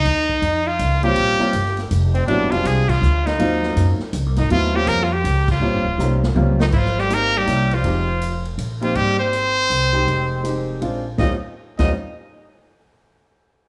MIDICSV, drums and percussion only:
0, 0, Header, 1, 2, 480
1, 0, Start_track
1, 0, Tempo, 371058
1, 67, Time_signature, 3, 2, 24, 8
1, 17700, End_track
2, 0, Start_track
2, 0, Title_t, "Drums"
2, 70, Note_on_c, 9, 51, 62
2, 71, Note_on_c, 9, 36, 19
2, 199, Note_off_c, 9, 51, 0
2, 201, Note_off_c, 9, 36, 0
2, 379, Note_on_c, 9, 36, 45
2, 508, Note_off_c, 9, 36, 0
2, 547, Note_on_c, 9, 44, 61
2, 547, Note_on_c, 9, 51, 66
2, 548, Note_on_c, 9, 36, 28
2, 676, Note_off_c, 9, 44, 0
2, 676, Note_off_c, 9, 51, 0
2, 678, Note_off_c, 9, 36, 0
2, 1025, Note_on_c, 9, 44, 58
2, 1025, Note_on_c, 9, 51, 76
2, 1028, Note_on_c, 9, 36, 25
2, 1154, Note_off_c, 9, 44, 0
2, 1154, Note_off_c, 9, 51, 0
2, 1157, Note_off_c, 9, 36, 0
2, 1329, Note_on_c, 9, 51, 47
2, 1458, Note_off_c, 9, 51, 0
2, 1497, Note_on_c, 9, 51, 67
2, 1504, Note_on_c, 9, 36, 22
2, 1626, Note_off_c, 9, 51, 0
2, 1633, Note_off_c, 9, 36, 0
2, 1811, Note_on_c, 9, 38, 39
2, 1940, Note_off_c, 9, 38, 0
2, 1978, Note_on_c, 9, 44, 51
2, 1978, Note_on_c, 9, 51, 69
2, 1985, Note_on_c, 9, 36, 17
2, 2108, Note_off_c, 9, 44, 0
2, 2108, Note_off_c, 9, 51, 0
2, 2115, Note_off_c, 9, 36, 0
2, 2145, Note_on_c, 9, 38, 29
2, 2274, Note_off_c, 9, 38, 0
2, 2288, Note_on_c, 9, 51, 43
2, 2304, Note_on_c, 9, 38, 43
2, 2417, Note_off_c, 9, 51, 0
2, 2434, Note_off_c, 9, 38, 0
2, 2466, Note_on_c, 9, 36, 23
2, 2467, Note_on_c, 9, 44, 59
2, 2467, Note_on_c, 9, 51, 70
2, 2596, Note_off_c, 9, 36, 0
2, 2597, Note_off_c, 9, 44, 0
2, 2597, Note_off_c, 9, 51, 0
2, 2777, Note_on_c, 9, 51, 45
2, 2907, Note_off_c, 9, 51, 0
2, 2948, Note_on_c, 9, 36, 23
2, 2949, Note_on_c, 9, 51, 56
2, 3077, Note_off_c, 9, 36, 0
2, 3078, Note_off_c, 9, 51, 0
2, 3256, Note_on_c, 9, 51, 50
2, 3385, Note_off_c, 9, 51, 0
2, 3430, Note_on_c, 9, 36, 18
2, 3430, Note_on_c, 9, 44, 49
2, 3430, Note_on_c, 9, 51, 70
2, 3559, Note_off_c, 9, 36, 0
2, 3559, Note_off_c, 9, 44, 0
2, 3559, Note_off_c, 9, 51, 0
2, 3739, Note_on_c, 9, 36, 72
2, 3739, Note_on_c, 9, 49, 75
2, 3868, Note_off_c, 9, 49, 0
2, 3869, Note_off_c, 9, 36, 0
2, 3919, Note_on_c, 9, 44, 52
2, 4048, Note_off_c, 9, 44, 0
2, 4225, Note_on_c, 9, 38, 55
2, 4225, Note_on_c, 9, 51, 46
2, 4355, Note_off_c, 9, 38, 0
2, 4355, Note_off_c, 9, 51, 0
2, 4391, Note_on_c, 9, 51, 69
2, 4392, Note_on_c, 9, 36, 19
2, 4521, Note_off_c, 9, 51, 0
2, 4522, Note_off_c, 9, 36, 0
2, 4694, Note_on_c, 9, 38, 43
2, 4823, Note_off_c, 9, 38, 0
2, 4869, Note_on_c, 9, 36, 26
2, 4872, Note_on_c, 9, 44, 56
2, 4872, Note_on_c, 9, 51, 70
2, 4999, Note_off_c, 9, 36, 0
2, 5001, Note_off_c, 9, 44, 0
2, 5001, Note_off_c, 9, 51, 0
2, 5169, Note_on_c, 9, 38, 35
2, 5298, Note_off_c, 9, 38, 0
2, 5340, Note_on_c, 9, 44, 68
2, 5340, Note_on_c, 9, 51, 71
2, 5346, Note_on_c, 9, 36, 24
2, 5470, Note_off_c, 9, 44, 0
2, 5470, Note_off_c, 9, 51, 0
2, 5475, Note_off_c, 9, 36, 0
2, 5644, Note_on_c, 9, 38, 48
2, 5644, Note_on_c, 9, 51, 48
2, 5774, Note_off_c, 9, 38, 0
2, 5774, Note_off_c, 9, 51, 0
2, 5823, Note_on_c, 9, 51, 63
2, 5824, Note_on_c, 9, 36, 23
2, 5952, Note_off_c, 9, 51, 0
2, 5954, Note_off_c, 9, 36, 0
2, 6298, Note_on_c, 9, 44, 54
2, 6298, Note_on_c, 9, 51, 69
2, 6303, Note_on_c, 9, 36, 22
2, 6427, Note_off_c, 9, 44, 0
2, 6427, Note_off_c, 9, 51, 0
2, 6432, Note_off_c, 9, 36, 0
2, 6785, Note_on_c, 9, 36, 23
2, 6788, Note_on_c, 9, 44, 56
2, 6788, Note_on_c, 9, 51, 79
2, 6914, Note_off_c, 9, 36, 0
2, 6918, Note_off_c, 9, 44, 0
2, 6918, Note_off_c, 9, 51, 0
2, 7090, Note_on_c, 9, 49, 71
2, 7092, Note_on_c, 9, 36, 86
2, 7219, Note_off_c, 9, 49, 0
2, 7221, Note_off_c, 9, 36, 0
2, 7752, Note_on_c, 9, 38, 49
2, 7752, Note_on_c, 9, 44, 67
2, 7882, Note_off_c, 9, 38, 0
2, 7882, Note_off_c, 9, 44, 0
2, 8063, Note_on_c, 9, 38, 64
2, 8192, Note_off_c, 9, 38, 0
2, 8221, Note_on_c, 9, 48, 72
2, 8350, Note_off_c, 9, 48, 0
2, 8537, Note_on_c, 9, 38, 86
2, 8667, Note_off_c, 9, 38, 0
2, 8696, Note_on_c, 9, 49, 76
2, 8704, Note_on_c, 9, 36, 74
2, 8826, Note_off_c, 9, 49, 0
2, 8834, Note_off_c, 9, 36, 0
2, 8862, Note_on_c, 9, 38, 29
2, 8992, Note_off_c, 9, 38, 0
2, 9033, Note_on_c, 9, 38, 43
2, 9163, Note_off_c, 9, 38, 0
2, 9188, Note_on_c, 9, 44, 62
2, 9188, Note_on_c, 9, 51, 66
2, 9317, Note_off_c, 9, 44, 0
2, 9317, Note_off_c, 9, 51, 0
2, 9499, Note_on_c, 9, 51, 39
2, 9629, Note_off_c, 9, 51, 0
2, 9668, Note_on_c, 9, 44, 65
2, 9668, Note_on_c, 9, 51, 68
2, 9797, Note_off_c, 9, 44, 0
2, 9797, Note_off_c, 9, 51, 0
2, 9976, Note_on_c, 9, 51, 45
2, 10105, Note_off_c, 9, 51, 0
2, 10140, Note_on_c, 9, 51, 63
2, 10144, Note_on_c, 9, 36, 34
2, 10269, Note_off_c, 9, 51, 0
2, 10273, Note_off_c, 9, 36, 0
2, 10626, Note_on_c, 9, 44, 50
2, 10626, Note_on_c, 9, 51, 65
2, 10756, Note_off_c, 9, 44, 0
2, 10756, Note_off_c, 9, 51, 0
2, 10934, Note_on_c, 9, 51, 38
2, 11063, Note_off_c, 9, 51, 0
2, 11105, Note_on_c, 9, 44, 51
2, 11105, Note_on_c, 9, 51, 66
2, 11234, Note_off_c, 9, 44, 0
2, 11234, Note_off_c, 9, 51, 0
2, 11413, Note_on_c, 9, 51, 45
2, 11542, Note_off_c, 9, 51, 0
2, 11581, Note_on_c, 9, 51, 61
2, 11585, Note_on_c, 9, 36, 33
2, 11711, Note_off_c, 9, 51, 0
2, 11714, Note_off_c, 9, 36, 0
2, 12068, Note_on_c, 9, 44, 49
2, 12068, Note_on_c, 9, 51, 67
2, 12197, Note_off_c, 9, 44, 0
2, 12197, Note_off_c, 9, 51, 0
2, 12556, Note_on_c, 9, 44, 55
2, 12556, Note_on_c, 9, 51, 70
2, 12686, Note_off_c, 9, 44, 0
2, 12686, Note_off_c, 9, 51, 0
2, 13035, Note_on_c, 9, 36, 34
2, 13038, Note_on_c, 9, 51, 54
2, 13164, Note_off_c, 9, 36, 0
2, 13168, Note_off_c, 9, 51, 0
2, 13512, Note_on_c, 9, 44, 52
2, 13512, Note_on_c, 9, 51, 63
2, 13642, Note_off_c, 9, 44, 0
2, 13642, Note_off_c, 9, 51, 0
2, 13993, Note_on_c, 9, 51, 62
2, 14122, Note_off_c, 9, 51, 0
2, 14461, Note_on_c, 9, 38, 74
2, 14469, Note_on_c, 9, 36, 93
2, 14590, Note_off_c, 9, 38, 0
2, 14598, Note_off_c, 9, 36, 0
2, 15248, Note_on_c, 9, 38, 70
2, 15248, Note_on_c, 9, 49, 71
2, 15257, Note_on_c, 9, 36, 74
2, 15377, Note_off_c, 9, 38, 0
2, 15377, Note_off_c, 9, 49, 0
2, 15386, Note_off_c, 9, 36, 0
2, 17700, End_track
0, 0, End_of_file